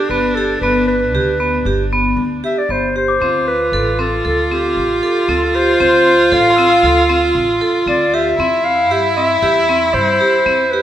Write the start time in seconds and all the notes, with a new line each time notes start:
Already playing: D4 G4
0.09 G1 B3 B4
0.35 G4 A4
0.61 G1 B3 B4
0.88 B4
1.13 D2 G4
1.40 B3
1.65 G1 G4
1.92 B3
2.17 D2
2.44 G4 E5
2.58 D5
2.69 G1 B3 C5
2.96 G4 C5
3.08 D6
3.20 D2 C4 F4
3.48 B4
3.72 A1 A4
3.99 C4 A4
4.25 D2 A4
4.51 C4 G4
4.76 A1
5.03 G4 A4
5.28 D2 C4 A4
5.55 G4 C5
5.80 D2 C4 C5
6.32 A1 A4 F5
6.50 C6
6.56 C4 E6
6.83 D2 A4
7.10 C4
7.35 A1
7.61 A4
7.86 D2 C4 D5
8.14 G4 E5
8.38 E2 C4 E4
8.65 F5
8.90 G2 G4 E5
9.16 C4 E5
9.42 E2 G4
9.69 C4
9.94 G2 C5
10.21 G4
10.46 E2 C4
10.70 G4 B4